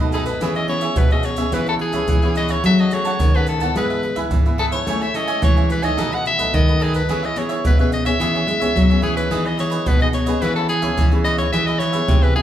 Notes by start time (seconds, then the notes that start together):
Already playing: F#2 B2
0.00 F#3 A3 D#4 A4 B4 D#5
0.12 D#4 G#4 A4 B4 D#5, pandeiro, maracas
0.26 A4 B4 D#5, pandeiro, maracas, surdo
0.41 E3 B3 C#4 E4 G#4 C#5 E5, pandeiro, maracas, surdo
0.55 G#4 C#5 D#5 E5, pandeiro, maracas
0.68 B3 C#4 E4 G#4 C#5 E5, pandeiro
0.81 G#4 C#5 E5, pandeiro, maracas
0.96 B2 B4, pandeiro, maracas, surdo
1.11 B3 C#4 G#4 C#5 D#5 E5, pandeiro, maracas, surdo
1.23 C#5, muted cavaquinho stroke, pandeiro, maracas
1.36 B3 C#4 G#4 C#5 E5, pandeiro, maracas, surdo
1.52 E3 E4 B4 C#5 E5, pandeiro, maracas, surdo
1.67 A4 B4 C#5 E5, pandeiro, maracas
1.79 G#4, muted cavaquinho stroke, pandeiro
1.93 B3 C#4 G#4 B4 C#5 E5, pandeiro, maracas, surdo
2.08 E3, pandeiro, maracas, surdo
2.22 B3 C#4 G#4 B4 C#5 E5, pandeiro, maracas
2.35 E4 B4 C#5 D#5 E5, pandeiro, maracas, surdo
2.48 B4 C#5 E5, pandeiro, maracas, surdo
2.64 F#3 A3 C#4 G#4 C#5 E5 F#5 A5, pandeiro, maracas, surdo
2.79 C#5 D#5 F#5 A5, pandeiro, maracas
2.91 A3 C#4 G#4 C#5 F#5 A5, pandeiro, maracas
3.05 C#5 F#5 A5, pandeiro, maracas
3.19 C#3 D#3, pandeiro, maracas, surdo
3.34 A3 C#4 G#4 B4 C#5 F#5 A5, pandeiro, maracas, surdo
3.47 A4, muted cavaquinho stroke, pandeiro, maracas
3.60 E3 B3 E4 C#5 F#5 A5, pandeiro, maracas, surdo
3.75 G#2 G#3 E4 G#4 B4 E5, pandeiro, maracas, surdo
3.90 G#4 B4 E5, pandeiro, maracas
4.03 muted cavaquinho stroke, pandeiro
4.16 E3 B3 E4 G#4 B4 E5, pandeiro, maracas, surdo
4.31 G#2 E3, pandeiro, maracas, surdo
4.46 E3 B3 E4 G#4 B4 E5, pandeiro, maracas
4.58 E4 G#4 A4 B4 E5, pandeiro, surdo
4.72 G#4 B4 C#5 E5, pandeiro, maracas, surdo
4.87 A2 G#3 A3 C#4 E4 A4 C#5 E5 G#5, pandeiro, maracas, surdo
5.01 C#5 E5 G#5, pandeiro, maracas
5.14 G#3 C#4 E4 A4 C#5 D#5 E5 G#5, pandeiro, maracas
5.27 C#5 E5 G#5, pandeiro, maracas
5.42 E3 C#5, pandeiro, maracas, surdo
5.56 G#3 C#4 E4 C#5 E5 G#5, pandeiro, maracas, surdo
5.69 B4, muted cavaquinho stroke, pandeiro, maracas
5.82 F#3 A3 D#4 C#5 D#5 E5 G#5, pandeiro, maracas, surdo
5.97 B2 D#4 A4 B4 D#5, pandeiro, maracas, surdo
6.11 A4 B4 D#5 F#5, pandeiro, maracas
6.25 E5, muted cavaquinho stroke, pandeiro, maracas
6.38 F#3 A3 D#4 A4 B4 D#5, pandeiro, maracas, surdo
6.53 F#2 D#3 D#5, pandeiro, maracas, surdo
6.67 F#3 A3 D#4 A4 B4 D#5, pandeiro, maracas
6.80 D#4 G#4 A4 B4 D#5, pandeiro
6.94 A4 B4 D#5, pandeiro, maracas, surdo
7.09 E3 B3 C#4 E4 G#4 C#5 E5, pandeiro, maracas, surdo
7.23 G#4 C#5 D#5 E5, pandeiro, maracas
7.36 B3 C#4 E4 G#4 C#5 E5, pandeiro, maracas
7.49 G#4 C#5 E5, pandeiro, maracas
7.64 B2 B4, pandeiro, maracas, surdo
7.79 B3 C#4 G#4 B4 C#5 E5, pandeiro, maracas, surdo
7.92 D#5, muted cavaquinho stroke, pandeiro, maracas
8.05 B3 C#4 G#4 C#5 E5, pandeiro, maracas, surdo
8.20 E3 B3 C#4 E4 G#4 C#5 E5, pandeiro, maracas, surdo
8.34 G#4 C#5 E5, pandeiro, maracas
8.47 G#3, muted cavaquinho stroke, pandeiro, maracas
8.60 B3 C#4 G#4 C#5 E5, pandeiro, maracas, surdo
8.76 B2 F#3, pandeiro, maracas, surdo
8.90 B3 C#4 G#4 C#5 E5, pandeiro, maracas
9.02 E3 E4 G#4 C#5 E5, pandeiro, surdo
9.15 G#4 B4 C#5 E5, pandeiro, maracas, surdo
9.31 E3 B3 D#4 E4 G#4 B4 D#5, pandeiro, maracas, surdo
9.44 G#4 B4 D#5, pandeiro, maracas
9.58 B3 D#4 E4 G#4 B4 C#5 D#5, pandeiro, maracas
9.70 G#4 B4 D#5, pandeiro, maracas
9.86 B2 B4, pandeiro, maracas, surdo
10.00 B3 D#4 G#4 B4 D#5, pandeiro, maracas, surdo
10.13 C#5, muted cavaquinho stroke, pandeiro, maracas
10.26 B3 C#4 G#4 B4 D#5, pandeiro, maracas, surdo
10.42 E3 E4 B4 C#5 E5, pandeiro, maracas, surdo
10.56 A4 B4 C#5 E5, pandeiro, maracas
10.69 G#4, muted cavaquinho stroke, pandeiro, maracas
10.82 B3 C#4 G#4 B4 C#5 E5, pandeiro, maracas, surdo
10.97 E3, pandeiro, maracas, surdo
11.12 B3 C#4 G#4 B4 C#5 E5, pandeiro, maracas
11.24 E4 B4 C#5 D#5 E5, pandeiro, maracas, surdo
11.38 B4 C#5 E5, pandeiro, maracas, surdo
11.53 E3 B3 E4 G#4 B4 E5, pandeiro, maracas, surdo
11.67 G#4 B4 D#5 E5, pandeiro, maracas
11.79 E4 G#4 B4 C#5 E5, pandeiro, maracas
11.93 B3 E4 G#4 B4 E5, pandeiro, maracas
12.08 C3, pandeiro, maracas, surdo
12.22 G#4 B4 E5, pandeiro, maracas, surdo
12.35 B3 E4 G#4, muted cavaquinho stroke, pandeiro